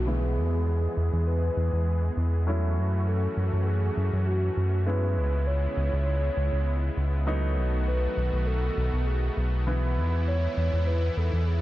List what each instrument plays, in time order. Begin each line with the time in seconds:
Already playing: analog synth bass B1, supersaw synth B3, downlifter
0.07 grand piano E3 G#3 B3 E4, supersaw synth E3 G#3 G#4, soft synth lead G#4
0.37 analog synth bass E2
0.67 soft synth lead G#4
0.97 analog synth bass E2
1.13 analog synth bass E2
1.27 soft synth lead B4
1.57 analog synth bass E2
1.73 analog synth bass E2
2.17 analog synth bass E2
2.47 supersaw synth E3 A3 C#4 F#4, grand piano F#3 A3 C#4 E4
2.77 analog synth bass F#2
3.07 soft synth lead A4
3.37 analog synth bass F#2
3.53 analog synth bass F#2
3.67 soft synth lead G#4
3.97 analog synth bass F#2
4.13 analog synth bass F#2
4.27 soft synth lead F#4
4.57 analog synth bass F#2
4.87 supersaw synth C#3 G#3 B3 E4, grand piano G#3 B3 C#4 E4, soft synth lead B4
5.17 analog synth bass C#2
5.47 soft synth lead C#5
5.77 analog synth bass C#2
5.93 analog synth bass C#2
6.07 soft synth lead C#5
6.37 analog synth bass C#2
6.53 analog synth bass C#2
6.97 analog synth bass C#2
7.27 supersaw synth D#3 A3 F#4, grand piano F#3 A3 B3 D#4
7.57 analog synth bass B1
7.87 soft synth lead B4
8.17 analog synth bass B1
8.33 analog synth bass B1
8.47 soft synth lead A4
8.77 analog synth bass B1
8.93 analog synth bass B1
9.07 soft synth lead G#4
9.37 analog synth bass B1
9.67 supersaw synth G#2 E3 E4, grand piano E3 B3 E4
9.97 analog synth bass E2
10.27 soft synth lead C#5
10.57 analog synth bass E2, soft synth lead C#5
10.73 analog synth bass E2
10.87 soft synth lead B4
11.17 analog synth bass E2, soft synth lead A4
11.33 analog synth bass E2
11.47 soft synth lead G#4